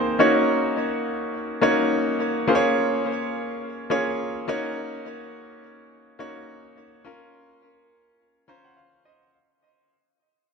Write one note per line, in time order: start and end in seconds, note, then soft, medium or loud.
0.00 0.19 A#3 medium
0.00 0.21 C4 medium
0.00 0.20 D#4 medium
0.00 0.22 G#4 medium
0.00 0.22 C5 loud
0.19 0.98 A#3 medium
0.19 0.98 C#4 medium
0.19 0.98 D#4 medium
0.19 0.98 F#4 medium
0.19 0.99 C#5 medium
1.61 2.21 A#3 medium
1.61 2.21 C#4 medium
1.61 2.21 D#4 medium
1.61 2.21 F#4 medium
1.61 2.21 C#5 loud
2.48 3.27 A#3 medium
2.48 3.27 C#4 medium
2.48 3.27 F4 medium
2.48 3.27 G#4 medium
2.48 2.56 C5 medium
2.55 3.30 C#5 loud
3.90 4.46 A#3 medium
3.90 4.47 C#4 medium
3.90 4.48 F4 medium
3.90 4.48 G#4 medium
3.90 4.48 C#5 loud
4.48 5.40 A#3 loud
4.48 5.40 C#4 medium
4.48 5.41 D#4 medium
4.48 5.41 F#4 medium
4.48 5.41 C#5 loud
6.19 6.78 A#3 medium
6.19 6.78 C#4 medium
6.19 6.78 D#4 medium
6.19 6.78 F#4 medium
6.19 6.79 C#5 loud
7.05 7.84 C#4 medium
7.05 7.84 F4 medium
7.05 7.84 A#4 loud
8.48 9.07 C#4 medium
8.48 9.07 F4 medium
8.48 9.07 C5 loud
8.48 8.63 A#5 medium
8.64 8.76 F#5 medium
8.77 9.03 F5 medium
9.05 9.32 D#5 medium